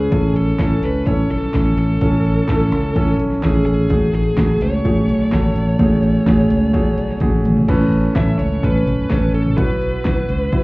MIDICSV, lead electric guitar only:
0, 0, Header, 1, 2, 480
1, 0, Start_track
1, 0, Tempo, 473186
1, 118, Time_signature, 4, 2, 24, 8
1, 10789, End_track
2, 0, Start_track
2, 0, Title_t, "Lead electric guitar"
2, 0, Program_c, 0, 29
2, 0, Note_on_c, 0, 68, 76
2, 329, Note_off_c, 0, 68, 0
2, 367, Note_on_c, 0, 69, 79
2, 848, Note_on_c, 0, 71, 72
2, 857, Note_off_c, 0, 69, 0
2, 1067, Note_off_c, 0, 71, 0
2, 1085, Note_on_c, 0, 73, 92
2, 1305, Note_off_c, 0, 73, 0
2, 1330, Note_on_c, 0, 69, 72
2, 1547, Note_off_c, 0, 69, 0
2, 1574, Note_on_c, 0, 69, 71
2, 1790, Note_off_c, 0, 69, 0
2, 1811, Note_on_c, 0, 69, 73
2, 3204, Note_off_c, 0, 69, 0
2, 3490, Note_on_c, 0, 68, 71
2, 3699, Note_off_c, 0, 68, 0
2, 3712, Note_on_c, 0, 68, 77
2, 4196, Note_off_c, 0, 68, 0
2, 4208, Note_on_c, 0, 68, 78
2, 4688, Note_on_c, 0, 73, 79
2, 4697, Note_off_c, 0, 68, 0
2, 7284, Note_off_c, 0, 73, 0
2, 8276, Note_on_c, 0, 76, 83
2, 8501, Note_off_c, 0, 76, 0
2, 8511, Note_on_c, 0, 73, 76
2, 8762, Note_on_c, 0, 71, 75
2, 8763, Note_off_c, 0, 73, 0
2, 9441, Note_off_c, 0, 71, 0
2, 9479, Note_on_c, 0, 69, 70
2, 9703, Note_off_c, 0, 69, 0
2, 9714, Note_on_c, 0, 71, 71
2, 10789, Note_off_c, 0, 71, 0
2, 10789, End_track
0, 0, End_of_file